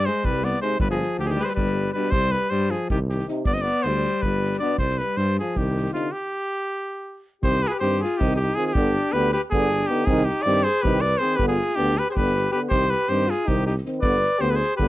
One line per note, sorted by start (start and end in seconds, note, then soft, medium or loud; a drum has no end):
0.06 0.26 G#3 medium
0.06 0.27 C5 medium
0.06 snare soft
0.24 0.54 C2 medium
0.24 0.46 G3 medium
0.24 0.46 B4 medium
0.24 kick medium
0.44 0.60 B3 medium
0.44 0.61 D5 medium
0.44 snare soft
0.53 snare soft
0.60 0.77 C3 medium
0.60 0.78 G#3 medium
0.60 0.79 D#4 soft
0.60 0.78 C5 medium
0.60 snare soft
0.79 1.01 G1 medium
0.79 0.89 G3 medium
0.79 0.90 B4 medium
0.79 kick loud
0.90 1.17 F3 medium
0.90 1.17 G#4 medium
0.90 snare soft
1.01 snare soft
1.18 1.40 D2 medium
1.18 1.23 D3 medium
1.18 1.28 F3 medium
1.18 1.27 G4 medium
1.18 snare soft
1.26 1.38 D#3 medium
1.26 1.41 G4 medium
1.26 1.30 G#4 medium
1.26 snare soft
1.36 1.42 G3 medium
1.36 1.45 B4 loud
1.36 snare soft
1.41 1.47 G#3 medium
1.41 1.49 C5 medium
1.46 1.54 G3 medium
1.46 1.54 B4 medium
1.46 snare soft
1.54 1.88 G1 medium
1.54 1.91 G3 medium
1.54 1.91 B4 medium
1.54 kick medium
1.66 snare soft
1.93 2.10 B2 soft
1.93 2.12 G3 medium
1.93 2.11 D4 soft
1.93 2.12 B4 medium
2.03 snare soft
2.11 2.34 C2 medium
2.11 2.32 G3 medium
2.11 2.33 C5 loud
2.11 kick loud
2.22 snare soft
2.31 2.50 G3 medium
2.31 2.51 B4 medium
2.31 snare soft
2.50 2.73 G2 medium
2.50 2.72 G3 medium
2.50 2.72 C5 loud
2.50 snare soft
2.70 2.89 F3 medium
2.70 2.90 G#4 medium
2.70 snare soft
2.90 3.21 C2 medium
2.90 2.99 D#3 medium
2.90 2.99 G4 medium
2.90 kick medium
3.09 3.27 D#3 medium
3.09 3.26 G4 medium
3.09 snare soft
3.19 snare soft
3.27 3.43 C3 medium
3.27 3.43 D#4 medium
3.27 snare soft
3.45 3.67 G1 medium
3.45 3.55 B3 medium
3.45 3.55 D5 loud
3.45 kick loud
3.53 3.65 C4 medium
3.53 3.63 D#5 medium
3.53 snare soft
3.61 3.89 B3 medium
3.61 3.84 D5 loud
3.65 snare soft
3.83 4.06 D2 medium
3.83 4.23 C5 loud
3.83 snare soft
3.88 4.26 G3 medium
4.04 snare soft
4.22 4.54 G1 medium
4.22 4.59 B4 medium
4.22 kick medium
4.26 4.61 G3 medium
4.43 snare soft
4.52 snare soft
4.59 4.75 B2 medium
4.59 4.78 B3 medium
4.59 4.76 D4 medium
4.59 4.76 D5 medium
4.59 snare soft
4.78 5.00 C2 medium
4.78 5.02 G3 medium
4.78 5.00 C5 medium
4.78 kick medium
4.90 snare soft
4.98 5.19 G3 medium
4.98 5.18 B4 medium
4.98 snare soft
5.17 5.38 G2 medium
5.17 5.39 G3 medium
5.17 5.38 C5 loud
5.17 snare soft
5.39 5.59 F3 medium
5.39 5.59 G#4 medium
5.39 snare soft
5.56 5.86 C2 medium
5.56 5.94 D#3 medium
5.56 5.92 G4 medium
5.56 kick medium
5.77 snare soft
5.85 snare soft
5.92 6.08 C3 medium
5.92 6.11 D3 medium
5.92 6.09 D#4 medium
5.92 6.13 F4 medium
5.92 snare soft
6.12 7.26 G4 medium
7.42 7.64 C2 medium
7.42 7.59 D#3 medium
7.42 7.60 C4 soft
7.42 7.62 G4 medium
7.42 7.64 C5 loud
7.42 kick medium
7.54 snare soft
7.62 7.70 G4 medium
7.62 7.69 B4 loud
7.62 snare soft
7.68 7.74 F4 medium
7.68 7.72 G#4 medium
7.68 7.79 B4 medium
7.72 7.81 G4 medium
7.80 8.03 G2 medium
7.80 7.97 D#3 medium
7.80 7.97 C4 medium
7.80 8.01 G4 medium
7.80 8.00 C5 medium
7.80 snare soft
8.01 8.22 F4 medium
8.01 8.19 G#4 medium
8.01 snare soft
8.17 8.51 C2 medium
8.17 8.36 D#3 medium
8.17 8.35 C4 medium
8.17 8.40 D#4 medium
8.17 8.35 G4 medium
8.17 kick medium
8.36 8.56 G4 medium
8.41 8.59 D#4 medium
8.41 snare soft
8.49 snare soft
8.54 8.73 D#3 medium
8.54 8.72 C4 medium
8.54 8.69 F4 medium
8.54 8.66 G#4 loud
8.54 snare soft
8.66 8.78 F4 medium
8.66 8.74 G#4 medium
8.73 8.96 G1 medium
8.73 8.91 D3 medium
8.73 8.91 B3 medium
8.73 9.17 D4 medium
8.73 9.14 G4 loud
8.73 kick loud
8.85 snare soft
8.96 snare soft
9.12 9.35 D2 medium
9.12 9.29 D3 medium
9.12 9.28 B3 medium
9.12 9.33 G4 medium
9.12 9.32 B4 loud
9.12 snare soft
9.33 9.42 G4 medium
9.33 9.41 B4 medium
9.33 snare soft
9.51 9.83 G1 medium
9.51 9.68 D3 medium
9.51 9.67 B3 medium
9.51 9.92 D4 medium
9.51 9.88 G#4 loud
9.51 kick medium
9.71 snare soft
9.81 snare soft
9.87 10.05 B3 medium
9.87 10.07 G4 loud
9.87 snare soft
9.91 10.06 D3 medium
9.91 10.07 D#4 medium
10.05 10.28 C2 medium
10.05 10.23 D#3 medium
10.05 10.22 C4 medium
10.05 10.28 D#4 medium
10.05 10.26 G#4 medium
10.05 kick loud
10.17 snare soft
10.24 10.48 D#4 medium
10.24 10.44 G4 loud
10.29 snare soft
10.42 10.67 G2 medium
10.42 10.61 D#3 medium
10.42 10.65 D5 loud
10.46 10.62 C4 medium
10.46 10.67 G4 medium
10.46 snare soft
10.63 10.85 G#4 medium
10.63 10.83 C5 loud
10.67 snare soft
10.82 11.14 C2 medium
10.82 11.00 D#3 medium
10.82 10.99 C4 medium
10.82 11.04 G4 medium
10.82 11.02 B4 loud
10.82 kick medium
11.01 11.22 B4 medium
11.01 11.19 D5 loud
11.05 snare soft
11.18 11.37 D#3 medium
11.18 11.36 C4 medium
11.18 11.39 G#4 medium
11.18 11.37 C5 loud
11.22 snare soft
11.36 11.60 G1 medium
11.36 11.55 D3 medium
11.36 11.55 B3 medium
11.36 11.47 G4 medium
11.36 11.47 B4 loud
11.36 kick medium
11.48 11.78 F4 medium
11.48 11.77 G#4 loud
11.48 snare soft
11.61 snare soft
11.69 snare soft
11.75 11.99 D2 medium
11.75 11.93 D3 medium
11.75 11.93 B3 medium
11.75 11.99 D4 medium
11.75 12.00 G4 loud
11.75 snare soft
11.89 snare soft
11.97 12.09 G4 medium
11.97 12.10 B4 loud
11.97 snare soft
12.08 12.16 G#4 medium
12.08 12.17 C5 medium
12.08 snare soft
12.14 12.46 G1 medium
12.14 12.32 D3 medium
12.14 12.31 B3 medium
12.14 12.51 G4 medium
12.14 12.52 B4 loud
12.14 kick medium
12.27 snare soft
12.36 snare soft
12.45 snare soft
12.52 12.69 D3 medium
12.52 12.69 B3 medium
12.52 12.60 G4 medium
12.52 12.61 B4 medium
12.52 snare soft
12.68 12.93 C2 medium
12.68 12.86 D#3 medium
12.68 12.87 C4 medium
12.68 12.89 G4 medium
12.68 12.92 C5 loud
12.68 kick medium
12.82 snare soft
12.89 13.07 G4 medium
12.89 13.10 B4 loud
12.89 snare soft
13.07 13.31 G2 medium
13.07 13.25 D#3 medium
13.07 13.26 C4 medium
13.07 13.29 G4 medium
13.07 13.32 C5 medium
13.07 snare soft
13.28 13.47 F4 medium
13.28 13.49 G#4 medium
13.28 snare soft
13.46 13.78 C2 loud
13.46 13.63 D#3 medium
13.46 13.63 C4 medium
13.46 13.65 D#4 medium
13.46 13.66 G4 medium
13.46 kick medium
13.65 13.74 D#4 medium
13.65 13.75 G4 medium
13.65 snare soft
13.77 snare soft
13.84 14.00 D#3 medium
13.84 14.01 C4 soft
13.84 snare soft
13.99 14.24 G1 medium
13.99 14.18 D3 medium
13.99 14.18 B3 medium
13.99 14.40 B4 medium
13.99 14.42 D5 loud
13.99 kick loud
14.23 snare soft
14.39 14.62 D2 medium
14.39 14.56 D3 medium
14.39 14.57 B3 medium
14.39 14.47 G4 medium
14.39 14.52 C5 loud
14.39 snare soft
14.47 14.54 G4 medium
14.47 14.57 B4 medium
14.52 14.75 G#4 medium
14.52 14.76 C5 loud
14.63 snare soft
14.76 14.88 G1 medium
14.76 14.88 D3 medium
14.76 14.88 G4 medium
14.76 14.88 B4 loud
14.76 kick medium
14.82 14.88 B3 medium